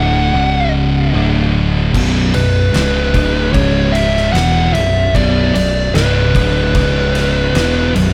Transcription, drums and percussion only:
1.95 kick, crash
2.34 ride
2.74 snare, ride
3.14 kick, ride
3.54 kick, ride
3.95 ride
4.17 snare
4.35 snare, ride
4.75 ride
5.15 kick, ride
5.55 ride
5.95 snare, ride
6.35 kick, ride
6.75 kick, ride
7.15 snare, ride
7.55 snare, ride
7.96 ride

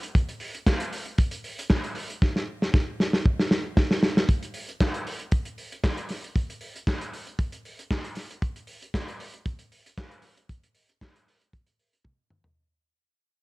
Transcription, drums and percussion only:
0.03 closed hi-hat
0.15 kick, closed hi-hat
0.29 closed hi-hat
0.40 open hi-hat
0.55 closed hi-hat
0.66 kick, snare, clap
0.80 closed hi-hat
0.93 open hi-hat
1.06 closed hi-hat
1.18 kick, closed hi-hat
1.31 closed hi-hat
1.44 open hi-hat
1.59 closed hi-hat
1.70 kick, snare, clap
1.84 closed hi-hat
1.95 open hi-hat
2.10 closed hi-hat
2.22 kick, snare
2.36 snare
2.62 snare
2.74 kick, snare
3.00 snare
3.13 snare
3.26 kick
3.40 snare
3.51 snare
3.77 kick, snare
3.91 snare
4.03 snare
4.17 snare
4.29 kick, closed hi-hat
4.43 closed hi-hat
4.54 open hi-hat
4.69 closed hi-hat
4.80 kick, snare, clap
4.94 closed hi-hat
5.07 open hi-hat
5.19 closed hi-hat
5.32 kick, closed hi-hat
5.45 closed hi-hat
5.58 open hi-hat
5.72 closed hi-hat
5.84 kick, snare, clap
5.97 closed hi-hat
6.09 snare, open hi-hat
6.24 closed hi-hat
6.36 kick, closed hi-hat
6.50 closed hi-hat
6.61 open hi-hat
6.76 closed hi-hat
6.87 kick, snare, clap
7.01 closed hi-hat
7.13 open hi-hat
7.27 closed hi-hat
7.39 kick, closed hi-hat
7.52 closed hi-hat
7.65 open hi-hat
7.79 closed hi-hat
7.91 kick, snare, clap
8.04 closed hi-hat
8.15 snare, open hi-hat
8.31 closed hi-hat
8.42 kick, closed hi-hat
8.56 closed hi-hat
8.67 open hi-hat
8.82 closed hi-hat
8.94 kick, snare, clap
9.08 closed hi-hat
9.20 open hi-hat
9.34 closed hi-hat
9.46 kick, closed hi-hat
9.59 closed hi-hat
9.72 open hi-hat
9.86 closed hi-hat
9.98 kick, snare, clap
10.11 closed hi-hat
10.22 open hi-hat
10.37 closed hi-hat
10.49 kick, closed hi-hat
10.63 closed hi-hat
10.75 open hi-hat
10.89 closed hi-hat
11.01 kick, snare, clap
11.16 closed hi-hat
11.28 open hi-hat
11.41 closed hi-hat
11.53 kick, closed hi-hat
11.67 closed hi-hat
11.79 open hi-hat
11.93 closed hi-hat
12.04 kick, high tom
12.30 mid tom
12.44 floor tom

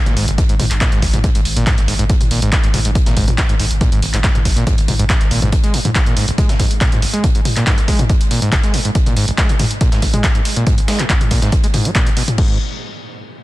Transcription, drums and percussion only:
0.06 closed hi-hat, mid tom
0.17 closed hi-hat, open hi-hat
0.28 closed hi-hat
0.38 kick, closed hi-hat
0.49 closed hi-hat
0.60 closed hi-hat, open hi-hat, mid tom
0.71 clap, closed hi-hat
0.81 kick, snare, clap, closed hi-hat
0.92 closed hi-hat
1.02 kick, snare, closed hi-hat, open hi-hat
1.14 closed hi-hat, mid tom
1.24 kick, closed hi-hat
1.35 closed hi-hat
1.45 closed hi-hat, open hi-hat
1.57 closed hi-hat
1.67 kick, snare, clap, closed hi-hat, mid tom
1.78 snare, closed hi-hat
1.88 closed hi-hat, open hi-hat
1.99 closed hi-hat
2.10 kick, closed hi-hat
2.21 closed hi-hat, mid tom
2.31 closed hi-hat, open hi-hat
2.42 closed hi-hat
2.52 kick, snare, clap, closed hi-hat
2.64 closed hi-hat
2.74 closed hi-hat, open hi-hat, mid tom
2.85 closed hi-hat
2.95 kick, closed hi-hat
3.06 snare, closed hi-hat
3.17 kick, closed hi-hat, open hi-hat
3.28 closed hi-hat, mid tom
3.38 kick, snare, clap, closed hi-hat
3.49 closed hi-hat
3.60 closed hi-hat, open hi-hat
3.71 closed hi-hat
3.81 kick, closed hi-hat, mid tom
3.92 closed hi-hat
4.02 closed hi-hat, open hi-hat
4.14 clap, closed hi-hat
4.24 kick, snare, clap, closed hi-hat
4.35 closed hi-hat, mid tom
4.45 kick, snare, closed hi-hat, open hi-hat
4.57 closed hi-hat
4.67 kick, closed hi-hat
4.78 closed hi-hat
4.88 closed hi-hat, open hi-hat, mid tom
4.99 closed hi-hat
5.10 kick, snare, clap, closed hi-hat
5.21 snare, closed hi-hat
5.31 closed hi-hat, open hi-hat
5.42 closed hi-hat, mid tom
5.52 kick, closed hi-hat
5.64 closed hi-hat
5.74 closed hi-hat, open hi-hat
5.85 closed hi-hat, mid tom
5.95 kick, snare, clap, closed hi-hat
6.06 closed hi-hat
6.17 closed hi-hat, open hi-hat
6.28 closed hi-hat
6.38 kick, closed hi-hat, mid tom
6.49 snare, closed hi-hat
6.60 kick, closed hi-hat, open hi-hat
6.71 closed hi-hat
6.81 kick, snare, clap, closed hi-hat
6.92 closed hi-hat, mid tom
7.02 closed hi-hat, open hi-hat
7.14 closed hi-hat
7.24 kick, closed hi-hat
7.35 closed hi-hat
7.45 closed hi-hat, open hi-hat, mid tom
7.56 clap, closed hi-hat
7.67 kick, snare, clap, closed hi-hat
7.78 closed hi-hat
7.88 kick, snare, closed hi-hat, open hi-hat
7.99 closed hi-hat, mid tom
8.09 kick, closed hi-hat
8.21 closed hi-hat
8.31 closed hi-hat, open hi-hat
8.42 closed hi-hat
8.52 kick, snare, clap, closed hi-hat, mid tom
8.63 snare, closed hi-hat
8.74 closed hi-hat, open hi-hat
8.85 closed hi-hat
8.95 kick, closed hi-hat
9.06 closed hi-hat, mid tom
9.17 closed hi-hat, open hi-hat
9.28 closed hi-hat
9.38 kick, snare, clap, closed hi-hat
9.49 closed hi-hat
9.59 closed hi-hat, open hi-hat, mid tom
9.71 closed hi-hat
9.81 kick, closed hi-hat
9.92 snare, closed hi-hat
10.02 kick, closed hi-hat, open hi-hat
10.14 closed hi-hat, mid tom
10.24 kick, snare, clap, closed hi-hat
10.35 closed hi-hat
10.45 closed hi-hat, open hi-hat
10.56 closed hi-hat
10.67 kick, closed hi-hat, mid tom
10.78 closed hi-hat
10.88 snare, closed hi-hat, open hi-hat
10.99 clap, closed hi-hat
11.10 kick, clap, closed hi-hat
11.21 closed hi-hat, mid tom
11.31 kick, closed hi-hat, open hi-hat
11.42 snare, closed hi-hat
11.52 kick, closed hi-hat
11.63 closed hi-hat
11.74 closed hi-hat, open hi-hat, mid tom
11.85 closed hi-hat
11.95 kick, clap, closed hi-hat
12.06 closed hi-hat
12.17 closed hi-hat, open hi-hat
12.28 closed hi-hat, mid tom
12.38 kick, crash

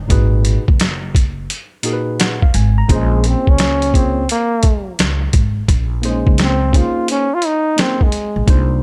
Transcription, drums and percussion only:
0.10 kick, closed hi-hat
0.45 closed hi-hat
0.68 kick
0.80 snare, closed hi-hat
1.15 kick, closed hi-hat
1.50 closed hi-hat
1.83 closed hi-hat
2.20 snare, closed hi-hat
2.42 kick
2.54 closed hi-hat
2.89 kick, closed hi-hat
3.24 closed hi-hat
3.47 kick
3.58 snare, closed hi-hat
3.82 closed hi-hat
3.94 kick, closed hi-hat
4.29 closed hi-hat
4.63 kick, closed hi-hat
4.99 snare, closed hi-hat
5.33 kick, closed hi-hat
5.68 kick, closed hi-hat
6.03 closed hi-hat
6.27 kick
6.38 snare, closed hi-hat
6.73 kick, closed hi-hat
7.08 closed hi-hat
7.42 closed hi-hat
7.78 snare, closed hi-hat
8.01 kick
8.12 closed hi-hat
8.48 kick, closed hi-hat

